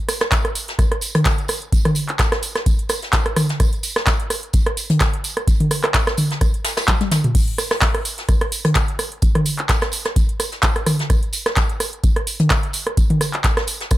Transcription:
0.09 cross-stick, open hi-hat, tambourine
0.20 cross-stick, snare, closed hi-hat
0.32 kick, snare, clap, closed hi-hat, tambourine
0.45 cross-stick, closed hi-hat
0.55 open hi-hat, tambourine
0.68 snare, closed hi-hat
0.79 kick, cross-stick, closed hi-hat, tambourine
0.92 cross-stick, closed hi-hat
1.01 open hi-hat, tambourine
1.15 cross-stick, closed hi-hat, mid tom
1.25 kick, snare, clap, closed hi-hat, tambourine
1.38 closed hi-hat
1.48 cross-stick, open hi-hat, tambourine
1.62 closed hi-hat
1.72 kick, closed hi-hat, tambourine
1.85 cross-stick, closed hi-hat, mid tom
1.95 open hi-hat, tambourine
2.09 clap, closed hi-hat
2.19 kick, cross-stick, snare, clap, closed hi-hat, tambourine
2.32 cross-stick, snare, closed hi-hat
2.42 open hi-hat, tambourine
2.56 cross-stick, snare, closed hi-hat
2.66 kick, closed hi-hat, tambourine
2.79 closed hi-hat
2.89 cross-stick, open hi-hat, tambourine
3.02 snare, closed hi-hat
3.13 kick, snare, clap, closed hi-hat, tambourine
3.26 cross-stick, closed hi-hat
3.36 cross-stick, open hi-hat, mid tom, tambourine
3.49 snare, closed hi-hat
3.60 kick, cross-stick, closed hi-hat, tambourine
3.73 closed hi-hat
3.83 open hi-hat, tambourine
3.96 cross-stick, snare, closed hi-hat
4.07 kick, snare, clap, closed hi-hat, tambourine
4.20 closed hi-hat
4.30 cross-stick, open hi-hat, tambourine
4.43 closed hi-hat
4.53 kick, closed hi-hat, tambourine
4.66 cross-stick, closed hi-hat
4.77 open hi-hat, tambourine
4.90 closed hi-hat, mid tom
5.00 kick, cross-stick, snare, clap, closed hi-hat, tambourine
5.13 closed hi-hat
5.24 open hi-hat, tambourine
5.37 cross-stick, closed hi-hat
5.48 kick, closed hi-hat, tambourine
5.60 closed hi-hat, mid tom
5.71 cross-stick, open hi-hat, tambourine
5.84 cross-stick, clap, closed hi-hat
5.94 kick, snare, clap, closed hi-hat, tambourine
6.07 cross-stick, snare, closed hi-hat
6.17 open hi-hat, mid tom, tambourine
6.31 snare, closed hi-hat
6.41 kick, cross-stick, closed hi-hat, tambourine
6.54 closed hi-hat
6.64 snare, open hi-hat, tambourine
6.77 cross-stick, snare, closed hi-hat, tambourine
6.88 kick, snare, clap, closed hi-hat
7.00 snare, closed hi-hat, high tom
7.11 snare, open hi-hat, mid tom, tambourine
7.24 closed hi-hat, mid tom
7.35 kick, closed hi-hat, crash, tambourine
7.48 closed hi-hat
7.58 cross-stick, open hi-hat, tambourine
7.71 cross-stick, snare, closed hi-hat
7.81 kick, snare, clap, closed hi-hat, tambourine
7.95 cross-stick, closed hi-hat
8.05 open hi-hat, tambourine
8.18 snare, closed hi-hat
8.29 kick, cross-stick, closed hi-hat, tambourine
8.41 cross-stick, closed hi-hat
8.52 open hi-hat, tambourine
8.65 cross-stick, closed hi-hat, mid tom
8.75 kick, snare, clap, closed hi-hat, tambourine
8.88 closed hi-hat
8.99 cross-stick, open hi-hat, tambourine
9.12 closed hi-hat
9.22 kick, closed hi-hat, tambourine
9.35 cross-stick, closed hi-hat, mid tom
9.45 open hi-hat, tambourine
9.59 clap, closed hi-hat
9.69 kick, cross-stick, snare, clap, closed hi-hat, tambourine
9.81 cross-stick, snare, closed hi-hat
9.92 open hi-hat, tambourine
10.05 cross-stick, snare, closed hi-hat
10.16 kick, closed hi-hat, tambourine
10.29 closed hi-hat
10.40 cross-stick, open hi-hat, tambourine
10.52 snare, closed hi-hat
10.62 kick, snare, clap, closed hi-hat, tambourine
10.76 cross-stick, closed hi-hat
10.86 cross-stick, open hi-hat, mid tom, tambourine
10.99 snare, closed hi-hat
11.10 kick, cross-stick, closed hi-hat, tambourine
11.23 closed hi-hat
11.33 open hi-hat, tambourine
11.46 cross-stick, snare, closed hi-hat
11.57 kick, snare, clap, closed hi-hat, tambourine
11.69 closed hi-hat
11.80 cross-stick, open hi-hat, tambourine
11.93 closed hi-hat
12.04 kick, closed hi-hat, tambourine
12.16 cross-stick, closed hi-hat
12.27 open hi-hat, tambourine
12.40 closed hi-hat, mid tom
12.50 kick, cross-stick, snare, clap, closed hi-hat, tambourine
12.63 closed hi-hat
12.73 open hi-hat, tambourine
12.87 cross-stick, closed hi-hat
12.97 kick, closed hi-hat, tambourine
13.10 closed hi-hat, mid tom
13.21 cross-stick, open hi-hat, tambourine
13.34 clap, closed hi-hat
13.44 kick, snare, clap, closed hi-hat, tambourine
13.57 cross-stick, snare, closed hi-hat
13.67 open hi-hat, tambourine
13.81 snare, closed hi-hat
13.91 kick, cross-stick, closed hi-hat, tambourine

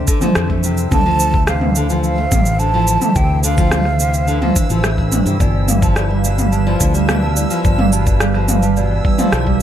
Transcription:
Already playing: D3 E3 D4 C5 E6
0.07 D3, kick, cabasa
0.21 F3, mid tom, cabasa
0.35 F2, cross-stick, cabasa
0.50 A3, kick
0.63 C3, cabasa
0.77 cabasa
0.91 D2 D3 E3 A5, kick, mid tom, cabasa
1.06 F3
1.20 cabasa
1.34 A3, kick
1.47 C3 F5, cross-stick, cabasa
1.61 mid tom
1.75 D3, cabasa
1.90 F3, cabasa
2.04 F5, cabasa
2.18 A3
2.31 A1 C3, kick, mid tom, cabasa
2.45 cabasa
2.59 D3 A5, cabasa
2.74 F3
2.87 cabasa
3.01 A3, mid tom, cabasa
3.15 D2 C3 G5, kick, cabasa
3.43 D3 F5, cabasa
3.57 F3, kick, cabasa
3.71 cross-stick, mid tom, cabasa
3.85 A3, cross-stick
4.00 C3, cabasa
4.14 cabasa
4.28 D3, cabasa
4.42 F3, mid tom
4.56 D4, kick, cabasa
4.70 A1 F3, cabasa
4.84 A3, cross-stick, cabasa
4.98 D4, kick
5.12 D4, mid tom, cabasa
5.25 G2 C3, cabasa
5.40 G1 B2 G3 B4 D5 F5, kick, cabasa
5.55 D5
5.68 G3 F5, mid tom, cabasa
5.82 F3 A5, kick, cabasa
5.96 D5, cross-stick, cabasa
6.11 G3 D5
6.24 B2 D5, cabasa
6.38 F5, mid tom, cabasa
6.52 G3 A5, cabasa
6.67 F3 D5
6.80 D2 D5, kick, cabasa
6.95 G3 D5, cabasa
7.09 B2 F5, cross-stick, mid tom, cabasa
7.23 A5
7.36 G3 D5, cabasa
7.50 F3 D5, cabasa
7.65 G1 D5, kick, cabasa
7.78 G3 F5, mid tom
7.92 B2 A5, cabasa
8.07 D5, kick, cabasa
8.20 G3 D5, cross-stick, cabasa
8.34 F3 D5, cross-stick
8.48 F5, mid tom, cabasa
8.63 G3 A5, cabasa
8.77 B2 D5, cabasa
8.91 D5
9.05 G3 D5, kick
9.19 F3 F5, mid tom, cabasa
9.32 B1 A5, cross-stick, cabasa
9.46 G3 D5, kick

